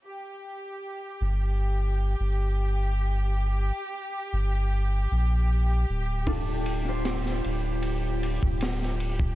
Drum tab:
RD |----------------|----------------|x-x-x-x-x-x-x-x-|
SD |----------------|----------------|----oo------oo--|
BD |----------------|----------------|o----------o---o|